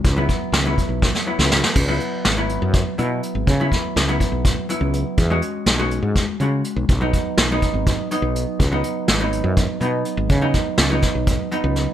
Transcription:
<<
  \new Staff \with { instrumentName = "Hollow-body jazz guitar" } { \time 7/8 \key cis \minor \tempo 4 = 123 r16 <fis b e'>4 <fis b e'>4~ <fis b e'>16 <fis b e'>4 | r16 <fis b e'>4 <fis b e'>4~ <fis b e'>16 <fis b e'>4~ | <fis b e'>16 <fis b e'>4 <fis b e'>4~ <fis b e'>16 <fis b e'>4 | r16 <gis cis' fis'>4 <gis cis' fis'>4~ <gis cis' fis'>16 <gis cis' fis'>4 |
r16 <fis b dis'>4 <fis b dis'>4~ <fis b dis'>16 <fis b dis'>4 | r16 <fis b dis'>4 <fis b dis'>4~ <fis b dis'>16 <fis b dis'>4~ | <fis b dis'>16 <fis b dis'>4 <fis b dis'>4~ <fis b dis'>16 <fis b dis'>4 | }
  \new Staff \with { instrumentName = "Fretless electric bass" } { \clef bass \time 7/8 \key cis \minor cis,8 r8 cis,8 r16 b,,8 r8 cis,8 r16 | cis,8 r8 gis,,8. fis,8 r16 b,8 r16 gis,,16 | cis8 r8 cis,8 r16 b,,8 r8 cis,8 r16 | e,8 r8 b,,8. gis,8 r16 cis8 r16 b,,16 |
b,,8 r8 b,,8 r16 gis,,8 r8 b,,8 r16 | cis,8 r8 gis,,8. fis,8 r16 b,8 r16 gis,,16 | cis8 r8 cis,8 r16 b,,8 r8 cis,8 r16 | }
  \new DrumStaff \with { instrumentName = "Drums" } \drummode { \time 7/8 <hh bd>8 <hh bd>8 <hh sn>8 <hh bd>8 <bd sn>16 sn8 sn16 sn16 sn16 | <cymc bd>8 hh8 <hh sn>8 hh8 <hh bd sn>8 hh8 hh8 | <hh bd>8 <hh bd sn>8 <hh sn>8 <hh bd>8 <hh bd>8 hh8 hh8 | <hh bd>8 hh8 <hh sn>8 hh8 <hh bd sn>8 hh8 hh8 |
<hh bd>8 <hh bd>8 <hh sn>8 <hh bd>8 <hh bd>8 hh8 hh8 | <hh bd>8 hh8 <hh sn>8 hh8 <hh bd>8 hh8 hh8 | <hh bd>8 <hh bd sn>8 <hh sn>8 <hh bd sn>8 <hh bd>8 hh8 <hh sn>8 | }
>>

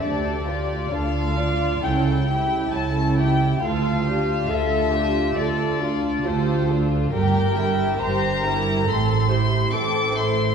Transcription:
<<
  \new Staff \with { instrumentName = "Violin section" } { \time 4/4 \key d \minor \tempo 4 = 68 d''4 f''4 g''4 a''8 g''8 | f''4 e''4 d''4 c''8 r8 | g''4 bes''4 c'''4 d'''8 c'''8 | }
  \new Staff \with { instrumentName = "Viola section" } { \time 4/4 \key d \minor g'4 f'4 e'8 e'4. | f'8 g'8 a'8 g'8 a'8 f'8 g'8 a'8 | bes'4 c''8 bes'8 a'8 g'8 a'4 | }
  \new Staff \with { instrumentName = "Violin section" } { \time 4/4 \key d \minor <d' a'>8 <f' d''>8 <d' a'>8 <f' d''>8 <cis' a'>8 <e' g'>8 <cis' a'>8 <e' g'>8 | <f' a'>8 <d' f'>8 <f' a'>8 <d' f'>8 <f' a'>8 <d' f'>8 <f' a'>8 <d' f'>8 | <g' bes'>8 <e' g'>8 <g' bes'>8 <e' g'>8 <c' a'>8 <e' c''>8 <c' a'>8 <e' c''>8 | }
  \new Staff \with { instrumentName = "Cello section" } { \clef bass \time 4/4 \key d \minor d,4 d,4 cis,4 cis,4 | d,4 d,4 d,4 d,4 | g,4 g,4 a,4 a,4 | }
  \new Staff \with { instrumentName = "Double bass section" } { \clef bass \time 4/4 \key d \minor d,4 d,4 cis,4 cis,4 | d,4 d,4 d,4 d,4 | g,,4 g,,4 a,,4 a,,4 | }
>>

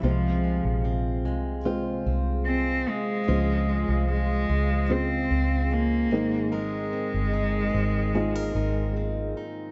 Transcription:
<<
  \new Staff \with { instrumentName = "French horn section" } { \time 4/4 \key aes \major \tempo 4 = 74 << { f''1~ | f''2.~ f''8 ees''8~ | ees''1 | } \\ { <c' f' aes'>1 | <f' c''>2.~ <f' c''>8 <c' bes'>8~ | <c' bes'>1 | } >> }
  \new Staff \with { instrumentName = "Felt piano" } { \time 4/4 \key aes \major <aes c' f' c''>2 <aes c' f' c''>2 | <aes des' f' c''>2 <des aes f' c''>4. <aes c' ees' bes'>8~ | <aes c' ees' bes'>4. r8 <aes c' ees' f'>2 | }
  \new Staff \with { instrumentName = "Felt piano" } { \clef bass \time 4/4 \key aes \major c4. r2 r8 | f4. r2 <aes, ees>8~ | <aes, ees>4 r2. | }
  \new Staff \with { instrumentName = "Steel-string acoustic guitar" } { \time 4/4 \key aes \major <c f'>8 aes8 c'8 aes8 f'8 c'8 aes8 c'8 | f'8 aes8 c'8 aes8 f'8 c'8 aes8 aes8 | <aes bes'>8 c'8 ees'8 c'8 aes'16 bes'16 ees'8 c'8 ees'8 | }
  \new Staff \with { instrumentName = "Cello" } { \clef bass \time 4/4 \key aes \major f4 r2 c'8 aes8~ | aes4 aes4 c'4 bes4 | aes2. r4 | }
  \new Staff \with { instrumentName = "Fingered electric bass" } { \clef bass \time 4/4 \key aes \major c,8. bes,,8. c,4 c,4 r8 | des,8. c,8. des,4 des,4 aes,,8~ | aes,,8 r16 g,,8. aes,,4 aes,,4 r8 | }
>>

